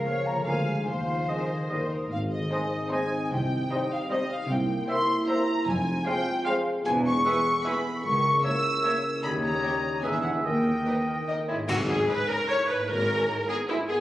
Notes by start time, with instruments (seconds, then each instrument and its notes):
Already playing: harp C#3 F3 F4 A#4, french horn section F3, flute F5
0.05 bassoon F3, viola section A#3 F4, clarinet A#4, violin section C#5, oboe F5
0.26 harp D3, french horn section A#3, flute A#5
0.33 harp F3
0.37 harp F4
0.42 harp A#4
0.46 double bass section D2, tuba D2, cello section D3, bassoon F3, french horn section G#3, viola section A#3 F4, clarinet A#4, violin section F5, oboe F5, flute G#5
0.70 harp D#3
0.75 harp G#3
0.79 harp D#4
0.83 harp C5
0.88 double bass section D#2, tuba D#2, cello section D#3, french horn section F3, violin section C5, flute F5
1.29 french horn section D#3, bassoon G#3, viola section C4 D#4, violin section A#4, clarinet C5, oboe D#5, flute D#5
1.51 harp D#3, violin section G#4
1.57 harp G3
1.62 harp D#4
1.66 bassoon G3, harp A#4, violin section C5, oboe D#5
1.71 tuba D#2, double bass section D#2, cello section D#3, viola section A#3 D#4, clarinet A#4
1.90 violin section A#4
2.11 tuba G#1, double bass section G#1, harp G#2, cello section G#2, french horn section C4 D#4, violin section F5, flute F5
2.30 harp D#3, violin section D#5, flute D#5
2.51 viola section G#3 C4, harp G#3, bassoon G#3, violin section D#4 C5, clarinet C5, oboe D#5
2.72 harp D#4
2.90 bassoon G#3, viola section G#3 C4, violin section D#4 C5 G#5, harp C5, clarinet C5, oboe D#5, flute G#5
3.12 harp D#4
3.24 violin section G#5
3.32 tuba C2, double bass section C2, harp C3, cello section C3, violin section G5, flute G5
3.53 harp C4
3.71 bassoon G3, harp G3, viola section G3 C4, violin section D#4 C5, clarinet C5, oboe D#5
3.91 harp D#4, violin section F5, flute F5
4.10 bassoon G3, viola section G3 C4, violin section D#4 C5 D#5, clarinet C5, oboe D#5, flute D#5
4.30 harp D#4, violin section F5, flute F5
4.49 tuba C2, double bass section C2, harp C3, cello section C3, french horn section A#3 E4, violin section G5, flute G5
4.70 harp G3
4.88 bassoon A#3, viola section A#3 C4, harp A#3, violin section E4 C5 C6, clarinet C5, oboe E5, flute C6
5.09 harp E4
5.27 bassoon A#3, viola section A#3 C4, violin section E4 C5 A#5, clarinet C5, oboe E5, flute A#5
5.48 harp E4
5.66 tuba F1, double bass section F1, cello section F2, harp F3, french horn section C4 F4, violin section G#5, flute G#5
5.88 harp G#3
6.05 bassoon G#3, viola section G#3 C4, violin section F4 C5 G5, clarinet C5, oboe F5, flute G5
6.26 harp C5
6.44 bassoon G#3, viola section G#3 C4, violin section F4 C5 F5, harp G#4, clarinet C5, oboe F5, flute F5
6.66 harp C5
6.85 tuba E1, double bass section E1, cello section E2, harp E3, french horn section B3 G#4, flute G#5, violin section G#5
7.05 harp E4, flute C#6, violin section C#6
7.25 bassoon G#3, harp B3, viola section B3 E4, violin section G#4 B4, clarinet B4, oboe E5
7.45 harp G#4
7.64 bassoon G#3, viola section B3 E4, violin section G#4 B4 B5, clarinet B4, harp E5, oboe E5, flute B5
7.84 harp G#4
8.03 cello section C#2, double bass section C#2, tuba C#2, harp C#3, french horn section C#4 A#4, flute C#6, violin section C#6
8.23 harp C#4
8.43 bassoon A#3, harp A#3, viola section A#3 E4, violin section A#4 C#5 E6, clarinet C#5, oboe E5, flute E6
8.64 harp E4
8.83 bassoon A#3, viola section A#3 E4, violin section A#4 C#5, clarinet C#5, oboe E5, harp E5
9.04 harp E4
9.23 cello section D#2, tuba D#2, double bass section D#2, harp D#3, bassoon G3, french horn section G4, clarinet C#5, oboe D#5, flute B5, violin section B5
9.42 harp G3, flute A#5, violin section A#5
9.63 viola section A#3 D#4, harp D#4, violin section G4 C#5
9.84 harp C#5
10.02 tuba E1, double bass section E1, cello section E2, harp E3, bassoon G#3, french horn section B3 G#4, viola section B3 G#4, violin section G#4 B4 G#5, clarinet B4, oboe E5, flute G#5
10.13 violin section E5, flute E5
10.22 harp G#4 B4, violin section F#5, flute F#5
10.44 tuba D#2, cello section D#2, double bass section D#2, harp D#3, french horn section A#3 A#4, bassoon A#3, clarinet A#4, oboe D#5, violin section G5, flute G5
10.86 viola section A#3 D#4, violin section A#4 D#5, clarinet B4
11.07 clarinet A#4
11.27 viola section A#3 D#4, harp A#4, violin section A#4 D#5, clarinet D#5
11.47 harp G#2 D#5, violin section G#3 E4, viola section E4, clarinet C#5
11.55 harp B3
11.60 harp D#4
11.64 violin section A#3, harp D#5
11.68 tuba G#1, double bass section G#1, cello section G#2, violin section F#4, viola section F#4, concert bass drum, crash
11.89 violin section B3 G#4, viola section G#4
12.08 violin section D#4 B4, viola section B4
12.28 violin section C#4 A#4, viola section A#4
12.47 violin section E4 C#5, viola section C#5
12.67 harp G#2, violin section D#4 B4, viola section B4
12.75 harp A#3
12.80 harp E4
12.84 violin section C#4, viola section A#4, harp C#5
12.89 tuba G#1, double bass section G#1, cello section G#2, violin section A#4
13.48 violin section B3 G#4, viola section G#4
13.68 violin section G#3 E4, viola section E4
13.88 harp G2, violin section B3 G#4, viola section G#4
13.94 harp A#3